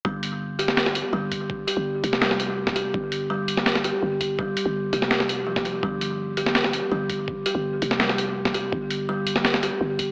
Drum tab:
HH |--x---x---x---x-|--x---x---x---x-|--x---x---x---x-|--x---x---x---x-|
SD |-------ooo------|-------ooo---o--|-------ooo------|-------ooo---o--|
BD |o-------------o-|o------------o--|o-------------o-|o------------o--|

HH |--x---x---x---x-|--x---x---x---x-|--x---x---x---x-|
SD |-------ooo------|-------ooo---o--|-------ooo------|
BD |o-------------o-|o------------o--|o-------------o-|